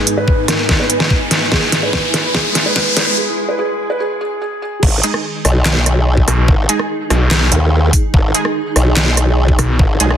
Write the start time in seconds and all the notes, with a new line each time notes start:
Already playing: G#2 G#3 B3 D#4 G#4 B4 D#5 G#5, riser
0.07 closed hi-hat
0.17 B4
0.28 kick
0.48 A#4, cross-stick, snare, closed hi-hat
0.69 kick, snare
0.80 B4
0.90 closed hi-hat
1.00 snare
1.10 kick
1.31 snare, closed hi-hat
1.52 G#3 E4 G#4 B4, kick, snare
1.58 E4
1.72 snare, closed hi-hat
1.83 B4
1.93 kick, snare
2.14 B4, snare, closed hi-hat
2.35 G#4, kick, snare
2.55 snare, closed hi-hat
2.66 B4
2.76 kick, snare
2.97 B4, snare, closed hi-hat
3.17 G#4
3.48 B4
3.59 G#4
3.90 B4
4.00 G#4
4.21 G#4
4.42 G#4
4.62 G#4
4.83 G#1 D#3 G#3 D#4, kick, crash
5.03 G#3 D#4 G#4, closed hi-hat
5.14 cross-stick
5.45 B1, cross-stick, open hi-hat
5.66 snare, clap
5.86 cross-stick, closed hi-hat
6.17 kick
6.28 B1, cross-stick, open hi-hat
6.48 G#1, kick
6.69 G#3 D#4 G#4, closed hi-hat
6.79 cross-stick
7.10 B1, cross-stick, open hi-hat
7.31 snare, clap
7.52 D#2, closed hi-hat
7.93 kick, open hi-hat
8.14 G#1 G#4, kick
8.34 G#3 D#4 G#4, closed hi-hat
8.45 cross-stick
8.76 B1, cross-stick, open hi-hat
8.97 snare, clap
9.17 cross-stick, closed hi-hat
9.48 kick
9.59 B1, cross-stick, open hi-hat
9.79 G#1, kick
10.00 B1 G#3 D#4 G#4, closed hi-hat
10.11 cross-stick